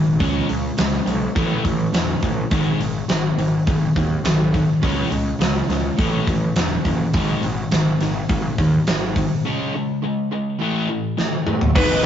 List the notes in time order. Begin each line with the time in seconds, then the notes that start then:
Already playing: G#1 G#2 D#3
0.20 C#2 C#3 G#3 C#4, kick, open hi-hat
0.49 C#2 C#3 G#3, open hi-hat
0.78 C#2 C#3 G#3, snare, open hi-hat
0.93 snare
1.06 B1 C#3 G#3, open hi-hat
1.35 A1 A2 E3 A3, kick, open hi-hat
1.65 A1 A2 E3, kick, open hi-hat
1.93 E1 A2 E3, snare, open hi-hat
2.23 A1 A2 E3, kick, open hi-hat
2.51 G#1 G#2 D#3 G#3, kick, open hi-hat
2.80 G#1 G#2 D#3, open hi-hat
3.09 G#1 G#2 D#3, snare, open hi-hat
3.38 G#1 G#2 D#3, open hi-hat
3.67 G#1 G#2 D#3, kick, open hi-hat
3.96 D#2 G#2 D#3, kick, open hi-hat
4.24 B1 G#2 D#3, snare, open hi-hat
4.54 G#2 D#3, kick, open hi-hat
4.83 C#2 C#3 G#3 C#4, kick, open hi-hat
5.11 C#2 C#3 G#3, open hi-hat
5.40 C#2 C#3 G#3, snare, open hi-hat
5.69 C#2 C#3 G#3, snare, open hi-hat
5.98 A1 A2 E3 A3, kick, open hi-hat
6.27 A1 A2 E3, kick, open hi-hat
6.56 E1 A2 E3, snare, open hi-hat
6.85 F#1 A2 E3, kick, open hi-hat
7.14 G#1 G#2 D#3 G#3, kick, open hi-hat
7.43 G#1 G#2 D#3, open hi-hat
7.71 G#1 G#2 D#3, snare, open hi-hat
8.01 G#1 G#2 D#3, snare, open hi-hat
8.29 G#1 G#2 D#3, kick, open hi-hat
8.58 D#2 G#2 D#3, kick, open hi-hat
8.87 G#1 G#2 D#3, snare, open hi-hat
9.16 G#2 D#3, kick, open hi-hat
9.45 C#3 G#3 C#4
9.75 C#3 G#3
10.03 C#3 G#3
10.32 C#3 G#3
10.61 A2 E3 A3
10.89 A2 E3
11.17 A2 E3, snare
11.47 A2 E3, mid tom
11.61 floor tom
11.74 G#1 G#2 D#3 G#3 D#4 G#4 B4, kick, crash